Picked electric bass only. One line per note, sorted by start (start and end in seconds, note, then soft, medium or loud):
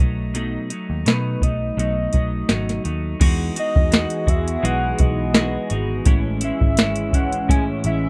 0.00 0.56 B1 medium
0.90 1.03 D#2 medium
1.06 1.35 B2 loud
1.42 1.70 B1 medium
1.77 2.06 B1 medium
2.14 2.42 B1 medium
2.50 2.78 G#1 medium
2.85 3.14 D#2 medium
3.21 3.49 E2 loud
3.76 4.05 E2 medium
4.27 4.56 E2 loud
4.64 4.92 B1 loud
4.99 5.56 B1 medium
5.71 5.99 G#1 medium
6.06 6.50 A1 medium
6.61 7.64 G#1 medium
7.85 8.09 A1 medium